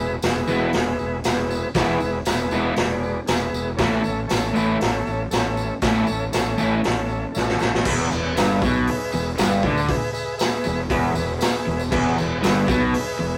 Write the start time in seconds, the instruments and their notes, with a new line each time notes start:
Already playing: fingered electric bass E1, transistor combo organ G#4 B4 E5
0.22 fingered electric bass E1, transistor combo organ G#4 B4, snare, open hi-hat, tambourine
0.27 transistor combo organ E5
0.47 fingered electric bass E1, overdriven electric guitar E3 G#3 B3 E4, tambourine
0.73 fingered electric bass E1, transistor combo organ G#4 B4, snare, open hi-hat
0.78 transistor combo organ E5
0.99 fingered electric bass E1, tambourine
1.24 fingered electric bass E1, transistor combo organ G#4 B4 E5, snare, open hi-hat, tambourine
1.51 tambourine
1.74 fingered electric bass E1, overdriven electric guitar E3 G#3 B3 E4, transistor combo organ G#4 B4 E5, kick, snare, open hi-hat, tambourine
2.00 fingered electric bass E1, tambourine
2.25 fingered electric bass E1, transistor combo organ G#4 B4 E5, snare, open hi-hat, tambourine
2.51 fingered electric bass E1, overdriven electric guitar E3 G#3 B3 E4, tambourine
2.76 fingered electric bass E1, transistor combo organ G#4 B4 D5, snare, open hi-hat
3.03 tambourine
3.27 fingered electric bass E1, transistor combo organ G#4 B4 E5, snare, open hi-hat, tambourine
3.53 fingered electric bass E1, tambourine
3.77 fingered electric bass A1, overdriven electric guitar A2 E3 A3, transistor combo organ A4 C#5 E5, kick, snare, open hi-hat, tambourine
3.81 overdriven electric guitar C#4 E4
4.04 fingered electric bass A1, tambourine
4.28 fingered electric bass A1, transistor combo organ A4 C#5 E5, snare, open hi-hat, tambourine
4.53 fingered electric bass A1, overdriven electric guitar A2 E3 A3 C#4 E4, tambourine
4.79 fingered electric bass A1, transistor combo organ A4 C#5 E5, snare, open hi-hat
5.07 fingered electric bass A1, tambourine
5.31 fingered electric bass A1, transistor combo organ A4 C#5 E5, snare, open hi-hat, tambourine
5.57 tambourine
5.82 fingered electric bass A1, overdriven electric guitar A2 E3 A3 C#4, transistor combo organ A4 C#5 E5, kick, snare, open hi-hat, tambourine
5.86 overdriven electric guitar E4
6.07 fingered electric bass A1, tambourine
6.32 fingered electric bass A1, transistor combo organ A4 C#5 E5, snare, open hi-hat, tambourine
6.58 fingered electric bass A1, overdriven electric guitar A2 E3 A3 C#4 E4, tambourine
6.82 fingered electric bass A1, transistor combo organ A4 C#5 E5, snare, open hi-hat, tambourine
7.08 tambourine
7.32 fingered electric bass A1, transistor combo organ A4 C#5 E5, tambourine
7.36 snare
7.49 snare
7.59 fingered electric bass A1, snare, tambourine
7.75 snare
7.84 fingered electric bass E1, overdriven electric guitar E2, transistor combo organ G#4 B4 E5, kick, crash
7.99 tambourine
8.11 fingered electric bass E1, overdriven electric guitar E2, transistor combo organ G#4 B4 E5, tambourine
8.34 fingered electric bass G1, overdriven electric guitar G2, transistor combo organ G#4 B4 E5, snare, open hi-hat, tambourine
8.62 fingered electric bass B1, overdriven electric guitar B2, kick, tambourine
8.87 transistor combo organ G#4 B4 E5, muted fingered electric bass stroke, muted overdriven electric guitar stroke, open hi-hat
9.12 fingered electric bass E1, overdriven electric guitar E2, tambourine
9.37 fingered electric bass G1, overdriven electric guitar G2, transistor combo organ G#4 B4 E5, snare, open hi-hat, tambourine
9.63 fingered electric bass D2, overdriven electric guitar D3, kick, tambourine
9.77 tambourine
9.88 transistor combo organ G#4 B4 E5, kick, open hi-hat
10.02 tambourine
10.13 transistor combo organ G#4 B4 E5, tambourine
10.37 transistor combo organ G#4 B4 E5, snare, open hi-hat, tambourine
10.64 fingered electric bass E1, overdriven electric guitar E2, tambourine
10.89 fingered electric bass E1, overdriven electric guitar E2, transistor combo organ G#4 B4 E5, kick, open hi-hat
11.15 fingered electric bass E1, overdriven electric guitar E2, tambourine
11.38 transistor combo organ G#4 B4 E5, open hi-hat, tambourine
11.42 snare
11.67 fingered electric bass E1, overdriven electric guitar E2, tambourine
11.79 tambourine
11.91 fingered electric bass E1, overdriven electric guitar E2, transistor combo organ G#4 B4 E5, kick, crash
12.15 transistor combo organ G#4 B4 E5, tambourine
12.19 fingered electric bass E1, overdriven electric guitar E2
12.41 fingered electric bass G1, overdriven electric guitar G2, transistor combo organ G#4 B4 E5, snare, open hi-hat, tambourine
12.68 fingered electric bass B1, overdriven electric guitar B2, kick, tambourine
12.93 transistor combo organ G#4 B4 E5, muted overdriven electric guitar stroke, muted fingered electric bass stroke, open hi-hat
13.19 fingered electric bass E1, overdriven electric guitar E2